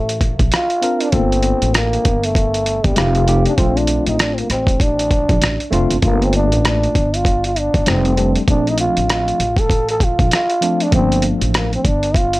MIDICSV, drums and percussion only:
0, 0, Header, 1, 2, 480
1, 0, Start_track
1, 0, Key_signature, -2, "minor"
1, 0, Tempo, 612245
1, 886, Time_signature, 4, 2, 24, 8
1, 9720, End_track
2, 0, Start_track
2, 0, Title_t, "Drums"
2, 71, Note_on_c, 9, 42, 57
2, 149, Note_off_c, 9, 42, 0
2, 163, Note_on_c, 9, 36, 75
2, 165, Note_on_c, 9, 42, 71
2, 241, Note_off_c, 9, 36, 0
2, 244, Note_off_c, 9, 42, 0
2, 309, Note_on_c, 9, 36, 84
2, 309, Note_on_c, 9, 42, 50
2, 387, Note_off_c, 9, 36, 0
2, 387, Note_off_c, 9, 42, 0
2, 405, Note_on_c, 9, 42, 82
2, 420, Note_on_c, 9, 37, 97
2, 483, Note_off_c, 9, 42, 0
2, 499, Note_off_c, 9, 37, 0
2, 548, Note_on_c, 9, 42, 46
2, 627, Note_off_c, 9, 42, 0
2, 646, Note_on_c, 9, 42, 62
2, 725, Note_off_c, 9, 42, 0
2, 788, Note_on_c, 9, 42, 52
2, 866, Note_off_c, 9, 42, 0
2, 881, Note_on_c, 9, 42, 76
2, 884, Note_on_c, 9, 36, 95
2, 959, Note_off_c, 9, 42, 0
2, 963, Note_off_c, 9, 36, 0
2, 1037, Note_on_c, 9, 42, 46
2, 1115, Note_off_c, 9, 42, 0
2, 1118, Note_on_c, 9, 42, 68
2, 1196, Note_off_c, 9, 42, 0
2, 1269, Note_on_c, 9, 42, 52
2, 1347, Note_off_c, 9, 42, 0
2, 1367, Note_on_c, 9, 42, 87
2, 1372, Note_on_c, 9, 37, 120
2, 1446, Note_off_c, 9, 42, 0
2, 1451, Note_off_c, 9, 37, 0
2, 1515, Note_on_c, 9, 42, 45
2, 1593, Note_off_c, 9, 42, 0
2, 1607, Note_on_c, 9, 42, 71
2, 1609, Note_on_c, 9, 36, 86
2, 1685, Note_off_c, 9, 42, 0
2, 1688, Note_off_c, 9, 36, 0
2, 1752, Note_on_c, 9, 42, 57
2, 1830, Note_off_c, 9, 42, 0
2, 1843, Note_on_c, 9, 36, 90
2, 1853, Note_on_c, 9, 42, 82
2, 1922, Note_off_c, 9, 36, 0
2, 1931, Note_off_c, 9, 42, 0
2, 1993, Note_on_c, 9, 42, 51
2, 2071, Note_off_c, 9, 42, 0
2, 2086, Note_on_c, 9, 42, 66
2, 2165, Note_off_c, 9, 42, 0
2, 2229, Note_on_c, 9, 42, 53
2, 2230, Note_on_c, 9, 36, 91
2, 2307, Note_off_c, 9, 42, 0
2, 2308, Note_off_c, 9, 36, 0
2, 2321, Note_on_c, 9, 42, 83
2, 2337, Note_on_c, 9, 37, 98
2, 2400, Note_off_c, 9, 42, 0
2, 2415, Note_off_c, 9, 37, 0
2, 2468, Note_on_c, 9, 42, 47
2, 2547, Note_off_c, 9, 42, 0
2, 2569, Note_on_c, 9, 42, 60
2, 2647, Note_off_c, 9, 42, 0
2, 2709, Note_on_c, 9, 42, 50
2, 2787, Note_off_c, 9, 42, 0
2, 2805, Note_on_c, 9, 42, 75
2, 2806, Note_on_c, 9, 36, 103
2, 2883, Note_off_c, 9, 42, 0
2, 2884, Note_off_c, 9, 36, 0
2, 2955, Note_on_c, 9, 42, 50
2, 3034, Note_off_c, 9, 42, 0
2, 3037, Note_on_c, 9, 42, 68
2, 3115, Note_off_c, 9, 42, 0
2, 3187, Note_on_c, 9, 42, 55
2, 3265, Note_off_c, 9, 42, 0
2, 3288, Note_on_c, 9, 42, 80
2, 3293, Note_on_c, 9, 37, 112
2, 3366, Note_off_c, 9, 42, 0
2, 3371, Note_off_c, 9, 37, 0
2, 3434, Note_on_c, 9, 42, 42
2, 3512, Note_off_c, 9, 42, 0
2, 3526, Note_on_c, 9, 42, 76
2, 3536, Note_on_c, 9, 37, 37
2, 3605, Note_off_c, 9, 42, 0
2, 3614, Note_off_c, 9, 37, 0
2, 3660, Note_on_c, 9, 36, 86
2, 3670, Note_on_c, 9, 42, 54
2, 3738, Note_off_c, 9, 36, 0
2, 3749, Note_off_c, 9, 42, 0
2, 3762, Note_on_c, 9, 36, 89
2, 3770, Note_on_c, 9, 42, 80
2, 3841, Note_off_c, 9, 36, 0
2, 3849, Note_off_c, 9, 42, 0
2, 3914, Note_on_c, 9, 42, 55
2, 3993, Note_off_c, 9, 42, 0
2, 4003, Note_on_c, 9, 36, 82
2, 4005, Note_on_c, 9, 42, 69
2, 4082, Note_off_c, 9, 36, 0
2, 4084, Note_off_c, 9, 42, 0
2, 4149, Note_on_c, 9, 36, 90
2, 4149, Note_on_c, 9, 42, 55
2, 4227, Note_off_c, 9, 42, 0
2, 4228, Note_off_c, 9, 36, 0
2, 4246, Note_on_c, 9, 42, 84
2, 4261, Note_on_c, 9, 37, 107
2, 4324, Note_off_c, 9, 42, 0
2, 4340, Note_off_c, 9, 37, 0
2, 4392, Note_on_c, 9, 42, 44
2, 4471, Note_off_c, 9, 42, 0
2, 4490, Note_on_c, 9, 42, 64
2, 4568, Note_off_c, 9, 42, 0
2, 4629, Note_on_c, 9, 42, 53
2, 4708, Note_off_c, 9, 42, 0
2, 4723, Note_on_c, 9, 42, 78
2, 4725, Note_on_c, 9, 36, 92
2, 4801, Note_off_c, 9, 42, 0
2, 4803, Note_off_c, 9, 36, 0
2, 4876, Note_on_c, 9, 42, 46
2, 4955, Note_off_c, 9, 42, 0
2, 4961, Note_on_c, 9, 42, 66
2, 5039, Note_off_c, 9, 42, 0
2, 5112, Note_on_c, 9, 42, 51
2, 5190, Note_off_c, 9, 42, 0
2, 5212, Note_on_c, 9, 42, 84
2, 5217, Note_on_c, 9, 37, 116
2, 5290, Note_off_c, 9, 42, 0
2, 5295, Note_off_c, 9, 37, 0
2, 5358, Note_on_c, 9, 42, 44
2, 5436, Note_off_c, 9, 42, 0
2, 5450, Note_on_c, 9, 36, 88
2, 5453, Note_on_c, 9, 42, 74
2, 5529, Note_off_c, 9, 36, 0
2, 5531, Note_off_c, 9, 42, 0
2, 5596, Note_on_c, 9, 42, 53
2, 5675, Note_off_c, 9, 42, 0
2, 5683, Note_on_c, 9, 36, 90
2, 5693, Note_on_c, 9, 42, 82
2, 5762, Note_off_c, 9, 36, 0
2, 5771, Note_off_c, 9, 42, 0
2, 5833, Note_on_c, 9, 42, 53
2, 5912, Note_off_c, 9, 42, 0
2, 5929, Note_on_c, 9, 42, 64
2, 6008, Note_off_c, 9, 42, 0
2, 6070, Note_on_c, 9, 36, 86
2, 6072, Note_on_c, 9, 42, 50
2, 6148, Note_off_c, 9, 36, 0
2, 6151, Note_off_c, 9, 42, 0
2, 6164, Note_on_c, 9, 42, 82
2, 6180, Note_on_c, 9, 37, 105
2, 6242, Note_off_c, 9, 42, 0
2, 6258, Note_off_c, 9, 37, 0
2, 6311, Note_on_c, 9, 42, 47
2, 6389, Note_off_c, 9, 42, 0
2, 6408, Note_on_c, 9, 42, 61
2, 6487, Note_off_c, 9, 42, 0
2, 6550, Note_on_c, 9, 42, 51
2, 6629, Note_off_c, 9, 42, 0
2, 6646, Note_on_c, 9, 36, 104
2, 6647, Note_on_c, 9, 42, 75
2, 6724, Note_off_c, 9, 36, 0
2, 6725, Note_off_c, 9, 42, 0
2, 6798, Note_on_c, 9, 42, 45
2, 6877, Note_off_c, 9, 42, 0
2, 6880, Note_on_c, 9, 42, 73
2, 6959, Note_off_c, 9, 42, 0
2, 7030, Note_on_c, 9, 42, 55
2, 7109, Note_off_c, 9, 42, 0
2, 7130, Note_on_c, 9, 42, 83
2, 7135, Note_on_c, 9, 37, 109
2, 7209, Note_off_c, 9, 42, 0
2, 7214, Note_off_c, 9, 37, 0
2, 7275, Note_on_c, 9, 42, 43
2, 7353, Note_off_c, 9, 42, 0
2, 7369, Note_on_c, 9, 42, 68
2, 7447, Note_off_c, 9, 42, 0
2, 7499, Note_on_c, 9, 36, 87
2, 7509, Note_on_c, 9, 42, 51
2, 7578, Note_off_c, 9, 36, 0
2, 7588, Note_off_c, 9, 42, 0
2, 7602, Note_on_c, 9, 36, 90
2, 7610, Note_on_c, 9, 42, 86
2, 7680, Note_off_c, 9, 36, 0
2, 7689, Note_off_c, 9, 42, 0
2, 7750, Note_on_c, 9, 42, 56
2, 7829, Note_off_c, 9, 42, 0
2, 7843, Note_on_c, 9, 36, 84
2, 7847, Note_on_c, 9, 42, 66
2, 7921, Note_off_c, 9, 36, 0
2, 7925, Note_off_c, 9, 42, 0
2, 7989, Note_on_c, 9, 36, 89
2, 7992, Note_on_c, 9, 42, 49
2, 8067, Note_off_c, 9, 36, 0
2, 8070, Note_off_c, 9, 42, 0
2, 8086, Note_on_c, 9, 42, 81
2, 8102, Note_on_c, 9, 37, 102
2, 8164, Note_off_c, 9, 42, 0
2, 8180, Note_off_c, 9, 37, 0
2, 8229, Note_on_c, 9, 42, 46
2, 8307, Note_off_c, 9, 42, 0
2, 8327, Note_on_c, 9, 42, 68
2, 8405, Note_off_c, 9, 42, 0
2, 8470, Note_on_c, 9, 42, 49
2, 8548, Note_off_c, 9, 42, 0
2, 8563, Note_on_c, 9, 42, 80
2, 8564, Note_on_c, 9, 36, 87
2, 8641, Note_off_c, 9, 42, 0
2, 8642, Note_off_c, 9, 36, 0
2, 8717, Note_on_c, 9, 42, 48
2, 8795, Note_off_c, 9, 42, 0
2, 8798, Note_on_c, 9, 42, 71
2, 8876, Note_off_c, 9, 42, 0
2, 8949, Note_on_c, 9, 42, 53
2, 9027, Note_off_c, 9, 42, 0
2, 9049, Note_on_c, 9, 42, 75
2, 9054, Note_on_c, 9, 37, 118
2, 9128, Note_off_c, 9, 42, 0
2, 9133, Note_off_c, 9, 37, 0
2, 9195, Note_on_c, 9, 42, 43
2, 9273, Note_off_c, 9, 42, 0
2, 9287, Note_on_c, 9, 36, 81
2, 9288, Note_on_c, 9, 42, 75
2, 9366, Note_off_c, 9, 36, 0
2, 9366, Note_off_c, 9, 42, 0
2, 9430, Note_on_c, 9, 42, 53
2, 9509, Note_off_c, 9, 42, 0
2, 9522, Note_on_c, 9, 36, 87
2, 9531, Note_on_c, 9, 42, 81
2, 9600, Note_off_c, 9, 36, 0
2, 9610, Note_off_c, 9, 42, 0
2, 9669, Note_on_c, 9, 42, 60
2, 9720, Note_off_c, 9, 42, 0
2, 9720, End_track
0, 0, End_of_file